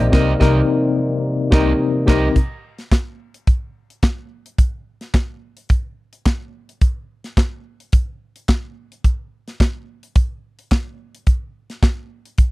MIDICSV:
0, 0, Header, 1, 7, 480
1, 0, Start_track
1, 0, Tempo, 557103
1, 114, Time_signature, 4, 2, 24, 8
1, 10783, End_track
2, 0, Start_track
2, 0, Title_t, "Clean electric guitar"
2, 0, Program_c, 0, 27
2, 109, Note_on_c, 0, 67, 105
2, 115, Note_on_c, 0, 70, 94
2, 118, Note_on_c, 0, 75, 92
2, 276, Note_off_c, 0, 67, 0
2, 280, Note_off_c, 0, 70, 0
2, 282, Note_off_c, 0, 75, 0
2, 347, Note_on_c, 0, 75, 85
2, 353, Note_on_c, 0, 70, 88
2, 360, Note_on_c, 0, 67, 90
2, 515, Note_off_c, 0, 75, 0
2, 519, Note_off_c, 0, 70, 0
2, 523, Note_off_c, 0, 67, 0
2, 1309, Note_on_c, 0, 67, 95
2, 1314, Note_on_c, 0, 70, 93
2, 1320, Note_on_c, 0, 75, 85
2, 1476, Note_off_c, 0, 67, 0
2, 1479, Note_off_c, 0, 70, 0
2, 1483, Note_off_c, 0, 75, 0
2, 1787, Note_on_c, 0, 67, 98
2, 1796, Note_on_c, 0, 70, 92
2, 1799, Note_on_c, 0, 75, 90
2, 1955, Note_off_c, 0, 67, 0
2, 1960, Note_off_c, 0, 70, 0
2, 1962, Note_off_c, 0, 75, 0
2, 10783, End_track
3, 0, Start_track
3, 0, Title_t, "Tine electric piano"
3, 0, Program_c, 1, 4
3, 0, Control_c, 1, 64, 127
3, 95, Note_on_c, 1, 48, 103
3, 103, Note_on_c, 1, 60, 95
3, 112, Note_on_c, 1, 63, 101
3, 122, Note_on_c, 1, 70, 105
3, 268, Note_off_c, 1, 48, 0
3, 273, Note_off_c, 1, 60, 0
3, 278, Note_off_c, 1, 63, 0
3, 284, Note_off_c, 1, 70, 0
3, 337, Note_on_c, 1, 48, 99
3, 344, Note_on_c, 1, 60, 96
3, 354, Note_on_c, 1, 63, 106
3, 362, Note_on_c, 1, 70, 101
3, 510, Note_off_c, 1, 48, 0
3, 514, Note_off_c, 1, 60, 0
3, 519, Note_off_c, 1, 63, 0
3, 524, Note_off_c, 1, 70, 0
3, 1298, Note_on_c, 1, 48, 98
3, 1306, Note_on_c, 1, 60, 89
3, 1318, Note_on_c, 1, 63, 94
3, 1325, Note_on_c, 1, 70, 97
3, 1470, Note_off_c, 1, 48, 0
3, 1474, Note_off_c, 1, 60, 0
3, 1481, Note_off_c, 1, 63, 0
3, 1485, Note_off_c, 1, 70, 0
3, 1778, Note_on_c, 1, 48, 102
3, 1787, Note_on_c, 1, 60, 102
3, 1794, Note_on_c, 1, 63, 100
3, 1804, Note_on_c, 1, 70, 97
3, 1950, Note_off_c, 1, 48, 0
3, 1955, Note_off_c, 1, 60, 0
3, 1959, Note_off_c, 1, 63, 0
3, 1965, Note_off_c, 1, 70, 0
3, 2043, Control_c, 1, 64, 0
3, 10783, End_track
4, 0, Start_track
4, 0, Title_t, "French horn section"
4, 0, Program_c, 2, 60
4, 0, Note_on_c, 2, 48, 91
4, 0, Note_on_c, 2, 55, 72
4, 0, Note_on_c, 2, 58, 78
4, 0, Note_on_c, 2, 63, 91
4, 0, Note_on_c, 2, 74, 83
4, 1994, Note_off_c, 2, 48, 0
4, 1995, Note_off_c, 2, 58, 0
4, 1997, Note_off_c, 2, 55, 0
4, 1997, Note_off_c, 2, 74, 0
4, 1998, Note_off_c, 2, 63, 0
4, 10783, End_track
5, 0, Start_track
5, 0, Title_t, "Fingered electric bass"
5, 0, Program_c, 3, 33
5, 0, Note_on_c, 3, 34, 77
5, 87, Note_off_c, 3, 34, 0
5, 115, Note_on_c, 3, 36, 93
5, 280, Note_off_c, 3, 36, 0
5, 355, Note_on_c, 3, 36, 102
5, 520, Note_off_c, 3, 36, 0
5, 1313, Note_on_c, 3, 36, 80
5, 1479, Note_off_c, 3, 36, 0
5, 1793, Note_on_c, 3, 36, 96
5, 1959, Note_off_c, 3, 36, 0
5, 10783, End_track
6, 0, Start_track
6, 0, Title_t, "Muted clean electric guitar strokes"
6, 4, Note_on_c, 9, 29, 38
6, 90, Note_off_c, 9, 29, 0
6, 10783, End_track
7, 0, Start_track
7, 0, Title_t, "Drums"
7, 0, Note_on_c, 9, 42, 51
7, 87, Note_off_c, 9, 42, 0
7, 111, Note_on_c, 9, 49, 81
7, 112, Note_on_c, 9, 36, 109
7, 115, Note_on_c, 9, 38, 92
7, 197, Note_off_c, 9, 49, 0
7, 198, Note_off_c, 9, 36, 0
7, 201, Note_off_c, 9, 38, 0
7, 351, Note_on_c, 9, 36, 89
7, 356, Note_on_c, 9, 38, 94
7, 437, Note_off_c, 9, 36, 0
7, 442, Note_off_c, 9, 38, 0
7, 1311, Note_on_c, 9, 36, 104
7, 1312, Note_on_c, 9, 38, 102
7, 1397, Note_off_c, 9, 36, 0
7, 1399, Note_off_c, 9, 38, 0
7, 1789, Note_on_c, 9, 49, 75
7, 1791, Note_on_c, 9, 36, 98
7, 1793, Note_on_c, 9, 38, 110
7, 1875, Note_off_c, 9, 49, 0
7, 1877, Note_off_c, 9, 36, 0
7, 1879, Note_off_c, 9, 38, 0
7, 2031, Note_on_c, 9, 42, 60
7, 2032, Note_on_c, 9, 36, 96
7, 2118, Note_off_c, 9, 36, 0
7, 2118, Note_off_c, 9, 42, 0
7, 2399, Note_on_c, 9, 42, 39
7, 2400, Note_on_c, 9, 38, 33
7, 2485, Note_off_c, 9, 42, 0
7, 2486, Note_off_c, 9, 38, 0
7, 2511, Note_on_c, 9, 36, 95
7, 2512, Note_on_c, 9, 42, 52
7, 2518, Note_on_c, 9, 38, 95
7, 2518, Note_on_c, 9, 39, 73
7, 2597, Note_off_c, 9, 36, 0
7, 2598, Note_off_c, 9, 42, 0
7, 2604, Note_off_c, 9, 38, 0
7, 2604, Note_off_c, 9, 39, 0
7, 2881, Note_on_c, 9, 42, 42
7, 2967, Note_off_c, 9, 42, 0
7, 2992, Note_on_c, 9, 42, 62
7, 2993, Note_on_c, 9, 36, 103
7, 3078, Note_off_c, 9, 42, 0
7, 3079, Note_off_c, 9, 36, 0
7, 3362, Note_on_c, 9, 42, 37
7, 3448, Note_off_c, 9, 42, 0
7, 3469, Note_on_c, 9, 42, 68
7, 3471, Note_on_c, 9, 36, 90
7, 3476, Note_on_c, 9, 38, 113
7, 3476, Note_on_c, 9, 39, 81
7, 3555, Note_off_c, 9, 42, 0
7, 3557, Note_off_c, 9, 36, 0
7, 3562, Note_off_c, 9, 38, 0
7, 3562, Note_off_c, 9, 39, 0
7, 3841, Note_on_c, 9, 42, 49
7, 3927, Note_off_c, 9, 42, 0
7, 3950, Note_on_c, 9, 36, 110
7, 3950, Note_on_c, 9, 42, 67
7, 4036, Note_off_c, 9, 42, 0
7, 4037, Note_off_c, 9, 36, 0
7, 4317, Note_on_c, 9, 38, 33
7, 4317, Note_on_c, 9, 42, 38
7, 4403, Note_off_c, 9, 38, 0
7, 4403, Note_off_c, 9, 42, 0
7, 4427, Note_on_c, 9, 42, 59
7, 4429, Note_on_c, 9, 36, 101
7, 4433, Note_on_c, 9, 38, 87
7, 4433, Note_on_c, 9, 39, 76
7, 4513, Note_off_c, 9, 42, 0
7, 4515, Note_off_c, 9, 36, 0
7, 4519, Note_off_c, 9, 38, 0
7, 4519, Note_off_c, 9, 39, 0
7, 4797, Note_on_c, 9, 42, 41
7, 4883, Note_off_c, 9, 42, 0
7, 4904, Note_on_c, 9, 42, 59
7, 4911, Note_on_c, 9, 36, 101
7, 4990, Note_off_c, 9, 42, 0
7, 4997, Note_off_c, 9, 36, 0
7, 5279, Note_on_c, 9, 42, 43
7, 5365, Note_off_c, 9, 42, 0
7, 5389, Note_on_c, 9, 42, 60
7, 5392, Note_on_c, 9, 36, 101
7, 5396, Note_on_c, 9, 38, 112
7, 5396, Note_on_c, 9, 39, 92
7, 5475, Note_off_c, 9, 42, 0
7, 5478, Note_off_c, 9, 36, 0
7, 5482, Note_off_c, 9, 38, 0
7, 5482, Note_off_c, 9, 39, 0
7, 5765, Note_on_c, 9, 42, 41
7, 5851, Note_off_c, 9, 42, 0
7, 5869, Note_on_c, 9, 42, 64
7, 5872, Note_on_c, 9, 36, 103
7, 5956, Note_off_c, 9, 42, 0
7, 5958, Note_off_c, 9, 36, 0
7, 6240, Note_on_c, 9, 42, 39
7, 6241, Note_on_c, 9, 38, 34
7, 6327, Note_off_c, 9, 38, 0
7, 6327, Note_off_c, 9, 42, 0
7, 6350, Note_on_c, 9, 36, 99
7, 6351, Note_on_c, 9, 42, 56
7, 6357, Note_on_c, 9, 38, 94
7, 6357, Note_on_c, 9, 39, 86
7, 6436, Note_off_c, 9, 36, 0
7, 6437, Note_off_c, 9, 42, 0
7, 6443, Note_off_c, 9, 39, 0
7, 6444, Note_off_c, 9, 38, 0
7, 6722, Note_on_c, 9, 42, 37
7, 6808, Note_off_c, 9, 42, 0
7, 6827, Note_on_c, 9, 42, 69
7, 6832, Note_on_c, 9, 36, 104
7, 6913, Note_off_c, 9, 42, 0
7, 6918, Note_off_c, 9, 36, 0
7, 7200, Note_on_c, 9, 42, 44
7, 7287, Note_off_c, 9, 42, 0
7, 7308, Note_on_c, 9, 42, 63
7, 7312, Note_on_c, 9, 36, 98
7, 7314, Note_on_c, 9, 39, 90
7, 7315, Note_on_c, 9, 38, 109
7, 7394, Note_off_c, 9, 42, 0
7, 7398, Note_off_c, 9, 36, 0
7, 7401, Note_off_c, 9, 38, 0
7, 7401, Note_off_c, 9, 39, 0
7, 7684, Note_on_c, 9, 42, 42
7, 7770, Note_off_c, 9, 42, 0
7, 7792, Note_on_c, 9, 36, 89
7, 7792, Note_on_c, 9, 42, 58
7, 7878, Note_off_c, 9, 36, 0
7, 7878, Note_off_c, 9, 42, 0
7, 8165, Note_on_c, 9, 38, 32
7, 8165, Note_on_c, 9, 42, 38
7, 8251, Note_off_c, 9, 38, 0
7, 8251, Note_off_c, 9, 42, 0
7, 8272, Note_on_c, 9, 36, 94
7, 8275, Note_on_c, 9, 42, 58
7, 8280, Note_on_c, 9, 39, 74
7, 8281, Note_on_c, 9, 38, 98
7, 8358, Note_off_c, 9, 36, 0
7, 8361, Note_off_c, 9, 42, 0
7, 8367, Note_off_c, 9, 38, 0
7, 8367, Note_off_c, 9, 39, 0
7, 8643, Note_on_c, 9, 42, 39
7, 8729, Note_off_c, 9, 42, 0
7, 8750, Note_on_c, 9, 42, 65
7, 8752, Note_on_c, 9, 36, 102
7, 8836, Note_off_c, 9, 42, 0
7, 8838, Note_off_c, 9, 36, 0
7, 9121, Note_on_c, 9, 42, 40
7, 9208, Note_off_c, 9, 42, 0
7, 9227, Note_on_c, 9, 42, 62
7, 9231, Note_on_c, 9, 36, 95
7, 9234, Note_on_c, 9, 39, 84
7, 9235, Note_on_c, 9, 38, 109
7, 9313, Note_off_c, 9, 42, 0
7, 9317, Note_off_c, 9, 36, 0
7, 9320, Note_off_c, 9, 39, 0
7, 9321, Note_off_c, 9, 38, 0
7, 9603, Note_on_c, 9, 42, 50
7, 9689, Note_off_c, 9, 42, 0
7, 9707, Note_on_c, 9, 42, 64
7, 9709, Note_on_c, 9, 36, 100
7, 9793, Note_off_c, 9, 42, 0
7, 9796, Note_off_c, 9, 36, 0
7, 10079, Note_on_c, 9, 42, 37
7, 10080, Note_on_c, 9, 38, 31
7, 10165, Note_off_c, 9, 42, 0
7, 10166, Note_off_c, 9, 38, 0
7, 10189, Note_on_c, 9, 36, 108
7, 10189, Note_on_c, 9, 42, 56
7, 10194, Note_on_c, 9, 39, 80
7, 10195, Note_on_c, 9, 38, 91
7, 10275, Note_off_c, 9, 42, 0
7, 10276, Note_off_c, 9, 36, 0
7, 10281, Note_off_c, 9, 38, 0
7, 10281, Note_off_c, 9, 39, 0
7, 10559, Note_on_c, 9, 42, 41
7, 10645, Note_off_c, 9, 42, 0
7, 10664, Note_on_c, 9, 42, 68
7, 10670, Note_on_c, 9, 36, 99
7, 10751, Note_off_c, 9, 42, 0
7, 10756, Note_off_c, 9, 36, 0
7, 10783, End_track
0, 0, End_of_file